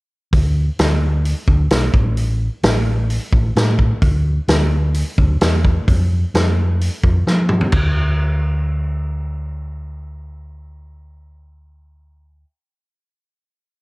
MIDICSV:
0, 0, Header, 1, 3, 480
1, 0, Start_track
1, 0, Tempo, 461894
1, 345, Time_signature, 4, 2, 24, 8
1, 14360, End_track
2, 0, Start_track
2, 0, Title_t, "Fingered electric bass"
2, 0, Program_c, 0, 33
2, 340, Note_on_c, 0, 38, 75
2, 712, Note_off_c, 0, 38, 0
2, 823, Note_on_c, 0, 38, 75
2, 1378, Note_off_c, 0, 38, 0
2, 1537, Note_on_c, 0, 38, 102
2, 1723, Note_off_c, 0, 38, 0
2, 1775, Note_on_c, 0, 35, 82
2, 1961, Note_off_c, 0, 35, 0
2, 2016, Note_on_c, 0, 33, 94
2, 2573, Note_off_c, 0, 33, 0
2, 2736, Note_on_c, 0, 33, 83
2, 3293, Note_off_c, 0, 33, 0
2, 3458, Note_on_c, 0, 33, 102
2, 3643, Note_off_c, 0, 33, 0
2, 3697, Note_on_c, 0, 45, 75
2, 4069, Note_off_c, 0, 45, 0
2, 4176, Note_on_c, 0, 38, 84
2, 4549, Note_off_c, 0, 38, 0
2, 4655, Note_on_c, 0, 38, 82
2, 5216, Note_off_c, 0, 38, 0
2, 5382, Note_on_c, 0, 38, 104
2, 5568, Note_off_c, 0, 38, 0
2, 5629, Note_on_c, 0, 40, 77
2, 5999, Note_off_c, 0, 40, 0
2, 6109, Note_on_c, 0, 41, 84
2, 6480, Note_off_c, 0, 41, 0
2, 6591, Note_on_c, 0, 41, 85
2, 7149, Note_off_c, 0, 41, 0
2, 7312, Note_on_c, 0, 41, 88
2, 7498, Note_off_c, 0, 41, 0
2, 7554, Note_on_c, 0, 53, 81
2, 7926, Note_off_c, 0, 53, 0
2, 8031, Note_on_c, 0, 38, 84
2, 12917, Note_off_c, 0, 38, 0
2, 14360, End_track
3, 0, Start_track
3, 0, Title_t, "Drums"
3, 341, Note_on_c, 9, 46, 46
3, 342, Note_on_c, 9, 36, 96
3, 444, Note_off_c, 9, 46, 0
3, 446, Note_off_c, 9, 36, 0
3, 820, Note_on_c, 9, 46, 53
3, 827, Note_on_c, 9, 38, 114
3, 924, Note_off_c, 9, 46, 0
3, 930, Note_off_c, 9, 38, 0
3, 1301, Note_on_c, 9, 46, 48
3, 1405, Note_off_c, 9, 46, 0
3, 1534, Note_on_c, 9, 36, 78
3, 1638, Note_off_c, 9, 36, 0
3, 1772, Note_on_c, 9, 46, 52
3, 1778, Note_on_c, 9, 38, 102
3, 1876, Note_off_c, 9, 46, 0
3, 1882, Note_off_c, 9, 38, 0
3, 2013, Note_on_c, 9, 36, 93
3, 2117, Note_off_c, 9, 36, 0
3, 2255, Note_on_c, 9, 46, 46
3, 2359, Note_off_c, 9, 46, 0
3, 2736, Note_on_c, 9, 46, 53
3, 2743, Note_on_c, 9, 38, 112
3, 2840, Note_off_c, 9, 46, 0
3, 2846, Note_off_c, 9, 38, 0
3, 3220, Note_on_c, 9, 46, 44
3, 3324, Note_off_c, 9, 46, 0
3, 3456, Note_on_c, 9, 36, 85
3, 3560, Note_off_c, 9, 36, 0
3, 3703, Note_on_c, 9, 46, 42
3, 3709, Note_on_c, 9, 38, 94
3, 3807, Note_off_c, 9, 46, 0
3, 3813, Note_off_c, 9, 38, 0
3, 3937, Note_on_c, 9, 36, 77
3, 4041, Note_off_c, 9, 36, 0
3, 4174, Note_on_c, 9, 46, 43
3, 4178, Note_on_c, 9, 36, 108
3, 4278, Note_off_c, 9, 46, 0
3, 4282, Note_off_c, 9, 36, 0
3, 4659, Note_on_c, 9, 46, 54
3, 4665, Note_on_c, 9, 38, 100
3, 4763, Note_off_c, 9, 46, 0
3, 4769, Note_off_c, 9, 38, 0
3, 5137, Note_on_c, 9, 46, 49
3, 5241, Note_off_c, 9, 46, 0
3, 5383, Note_on_c, 9, 36, 89
3, 5487, Note_off_c, 9, 36, 0
3, 5621, Note_on_c, 9, 46, 48
3, 5628, Note_on_c, 9, 38, 109
3, 5725, Note_off_c, 9, 46, 0
3, 5731, Note_off_c, 9, 38, 0
3, 5867, Note_on_c, 9, 36, 80
3, 5971, Note_off_c, 9, 36, 0
3, 6107, Note_on_c, 9, 46, 49
3, 6110, Note_on_c, 9, 36, 100
3, 6211, Note_off_c, 9, 46, 0
3, 6213, Note_off_c, 9, 36, 0
3, 6595, Note_on_c, 9, 46, 50
3, 6601, Note_on_c, 9, 38, 119
3, 6699, Note_off_c, 9, 46, 0
3, 6705, Note_off_c, 9, 38, 0
3, 7080, Note_on_c, 9, 46, 49
3, 7184, Note_off_c, 9, 46, 0
3, 7311, Note_on_c, 9, 36, 88
3, 7415, Note_off_c, 9, 36, 0
3, 7556, Note_on_c, 9, 38, 53
3, 7660, Note_off_c, 9, 38, 0
3, 7781, Note_on_c, 9, 45, 80
3, 7885, Note_off_c, 9, 45, 0
3, 7906, Note_on_c, 9, 43, 78
3, 8010, Note_off_c, 9, 43, 0
3, 8024, Note_on_c, 9, 49, 75
3, 8030, Note_on_c, 9, 36, 103
3, 8128, Note_off_c, 9, 49, 0
3, 8134, Note_off_c, 9, 36, 0
3, 14360, End_track
0, 0, End_of_file